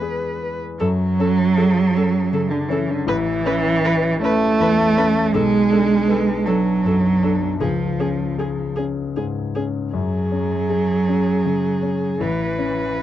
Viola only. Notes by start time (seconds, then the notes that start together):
Already playing: B4
0.80 A4
1.20 A4
1.57 A4
1.97 A4
2.33 A4
2.71 A4
3.08 B4
3.46 B4
3.85 B4
4.24 B4
4.61 B4
4.98 B4
5.34 A4
5.72 A4
6.09 A4
6.47 A4
6.86 A4
7.23 A4
7.61 G#4
8.00 G#4
8.39 G#4
8.76 G#4
9.16 G#4
9.55 G#4
9.94 G#4
12.20 B4